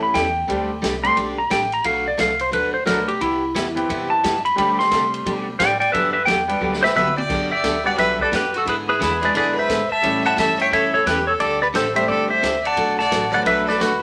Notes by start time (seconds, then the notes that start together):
Already playing: F#2 E3 A3 C#4 E4 G4
0.03 B5
0.14 E2 E3 G3 C#4 E4 A4 G5, kick, snare, hi-hat pedal, ride
0.47 D2 D3 G3 A3 C4 D4 G4, kick, ride
0.82 C2 D3 G3 C4 D4 G4, kick, snare, hi-hat pedal, ride
1.02 G3 A3 C4 D4 G4 C6, ride
1.16 B1 D3 G3 C4 D4 G4, kick, ride
1.38 A#5
1.50 A1 D3 G3 C4 D4 G4 G5, kick, snare, hi-hat pedal, ride
1.72 A#5, ride
1.84 B1 B2 F#3 A3 D4 F#4 F5, kick, ride
2.08 D5
2.17 C2 B2 F#3 A3 D4 F#4 F5, kick, snare, hi-hat pedal, ride
2.39 C5, ride
2.51 D2 B2 F#3 A3 D4 F#4 B4, kick, ride
2.74 C5
2.85 B1 B2 F#3 A3 B3 D4 F#4 A#4, kick, snare, hi-hat pedal, ride
3.08 G4, ride
3.21 C2 C3 G3 B3 E4 G4, kick, ride
3.54 E2 C3 G3 B3 E4 G4, kick, snare, hi-hat pedal, ride
3.75 E3 B3 C4 E4 G4, ride
3.89 F#2 C3 G3 B3 E4 G4, kick, ride
4.10 A5
4.23 G2 C3 G3 B3 E4 G4, kick, snare, hi-hat pedal, ride
4.45 B5, ride
4.56 D3 G3 A3 C4 D4 G4 B5, kick, ride
4.79 C6, snare
4.91 C3 D3 G3 C4 D4 G4, kick, snare, hi-hat pedal, ride
5.14 ride
5.26 B2 D3 G3 C4 D4 G4, kick, ride
5.59 A2 D3 G3 C4 D4 G4 D5 G5, kick, snare, hi-hat pedal, ride
5.80 D5 G5, ride
5.92 G2 D3 F#3 B3 D4 G4 B4 E5, kick, ride
6.13 B4 E5
6.25 E2 D3 F#3 B3 D4 G4 G5, kick, snare, hi-hat pedal, ride
6.48 G3 B3 D4 G4, ride
6.60 D2 D3 F#3 B3 D4 G4
6.73 snare
6.83 B4 C5 E5, snare
6.95 B1 D3 F#3 B3 D4 G4 B4 E5, hi-hat pedal, high tom
7.07 high tom
7.17 D5 G5, high tom
7.29 G1 D3 F#3 B3 D4 G4, kick, crash
7.52 D5 E5 G5
7.64 D2 D3 F#3 B3 D4 G4, kick, snare, hi-hat pedal, ride
7.84 G3 B3 D4 F#4 G4 D5 F#5
7.97 B1 D3 F#3 B3 D4 G4 B4 E5, kick, snare, ride
8.19 A4 B4 D5, kick
8.31 F#2 D3 F#3 B3 D4 G4, kick, snare, hi-hat pedal, ride
8.36 B4
8.54 F#4 A4, ride
8.65 G#2 D3 G#3 B3 E4 G#4, kick, ride
8.69 B4
8.88 E4 G#4 B4
9.00 E2 D3 G#3 B3 E4 G#4 B4, kick, snare, hi-hat pedal, ride
9.21 G#3 B3 D4 E4 G#4 B4, ride
9.25 D5
9.34 F#2 D3 G#3 B3 E4 G#4 B4 D5, kick, ride
9.55 B4
9.59 C5 E5
9.69 G#2 D3 G#3 B3 E4 G#4, kick, snare, hi-hat pedal, ride
9.90 E5 A5, muted upright bass stroke
10.02 A2 E3 G3 A3 C#4 E4 G4 A4, kick, ride
10.24 E5 F#5 A5
10.36 G2 E3 G3 C#4 E4 A4 E5 A5, kick, snare, hi-hat pedal, ride
10.59 C#5 E5 G5, ride
10.71 F#2 E3 G3 C#4 E4 A4 C#5 E5, kick, ride
10.93 A4 C#5
11.06 E2 E3 G3 C#4 E4 G4 A4 B4, kick, snare, hi-hat pedal, ride
11.27 A4 C#5
11.40 D2 D3 G3 C4 D4 G4 A4 D5, kick, ride
11.62 B4 D5
11.73 A1 D3 G3 C4 D4 G4 A4 C5, kick, snare, hi-hat pedal, ride
11.94 G3 A3 C4 D4 G4 C5 E5, ride
12.08 G1 D3 G3 C4 D4 G4 A4 D5, kick
12.29 C5 E5
12.42 D2 D3 G3 C4 D4 G4, kick, snare, hi-hat pedal, ride
12.63 D5 F#5 A5, ride
12.76 B1 B2 F#3 A3 D4 F#4, kick, ride
12.98 D5 F#5 A5, snare
13.11 A1 B2 F#3 A3 D4 F#4, kick, snare, hi-hat pedal, ride
13.31 F#3 A3 B3 D4 F#4 D5 F#5
13.45 B1 B2 F#3 A3 D4 F#4 B4 E5, kick, ride
13.65 A4 D5, snare
13.70 B4
13.79 D2 B2 F#3 A3 D4 F#4 B4, kick, snare, hi-hat pedal, ride